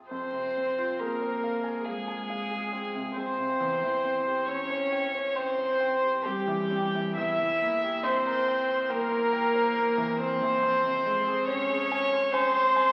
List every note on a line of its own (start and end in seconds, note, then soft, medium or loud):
0.00 0.13 C3 soft
0.00 0.13 C4 soft
0.00 0.13 F4 soft
0.00 0.13 G#4 soft
0.10 3.57 F2 soft
0.10 1.00 C4 medium
0.10 1.01 C5 medium
0.33 0.69 C3 soft
0.57 0.92 C4 soft
0.78 1.13 F4 soft
0.99 1.89 A#3 medium
0.99 1.35 G#4 soft
0.99 1.87 A#4 medium
0.99 1.85 A#4 medium
1.22 1.56 C5 soft
1.44 1.78 F5 soft
1.64 1.99 G#5 soft
1.85 3.18 G#3 medium
1.85 3.20 G#4 medium
1.85 3.14 G#4 medium
1.85 2.20 F5 medium
2.08 2.42 G#5 soft
2.30 2.64 F5 soft
2.51 2.86 G#4 soft
2.73 3.08 C4 soft
2.94 3.30 C3 soft
3.16 3.52 C4 soft
3.16 4.47 C4 medium
3.16 4.49 C5 medium
3.16 4.48 C5 medium
3.38 3.60 C3 soft
3.60 7.13 E2 medium
3.84 4.18 E3 soft
4.05 4.40 C4 soft
4.27 4.62 G4 soft
4.48 4.83 C4 medium
4.48 5.38 C#4 medium
4.48 5.37 C#5 medium
4.48 5.38 C#5 medium
4.70 5.05 C5 medium
4.92 5.27 G5 medium
5.15 5.50 C5 medium
5.35 6.26 C4 medium
5.35 6.26 C5 medium
5.35 5.71 G5 medium
5.58 5.94 C5 soft
5.80 6.16 G5 medium
6.03 6.39 G4 soft
6.25 7.16 G3 medium
6.25 6.62 C4 soft
6.25 7.16 G4 medium
6.47 6.85 E3 medium
6.71 7.08 C4 soft
6.95 7.17 E3 soft
7.16 10.59 E2 medium
7.16 8.04 E4 medium
7.16 8.05 E5 medium
7.16 8.06 E5 medium
7.39 7.74 E3 soft
7.62 7.96 A#3 medium
7.84 8.18 G4 medium
8.03 8.91 C4 medium
8.03 8.91 C5 medium
8.03 8.92 C5 medium
8.03 8.39 C5 medium
8.27 8.61 A#4 medium
8.48 8.82 G5 medium
8.69 9.03 C6 medium
8.89 10.19 A#3 medium
8.89 10.21 A#4 loud
8.89 10.19 A#4 medium
8.89 9.24 G5 medium
9.12 9.46 C6 medium
9.33 9.68 G5 medium
9.55 9.90 C5 medium
9.76 10.11 A#3 medium
9.98 10.33 E3 medium
10.17 10.55 A#3 medium
10.17 11.51 C4 medium
10.17 11.47 C5 medium
10.17 11.49 C5 loud
10.42 10.64 E3 medium
10.63 12.92 F2 medium
10.84 11.19 C3 medium
11.06 11.41 G#3 medium
11.27 11.62 G#4 medium
11.48 12.34 C#4 medium
11.48 11.83 C5 medium
11.48 12.33 C#5 loud
11.48 12.35 C#5 loud
11.70 12.04 G#4 medium
11.92 12.25 G#5 medium
12.13 12.47 C6 medium
12.31 12.92 C4 medium
12.31 12.92 C5 loud
12.31 12.68 G#5 medium
12.55 12.89 C6 medium
12.76 12.92 G#5 medium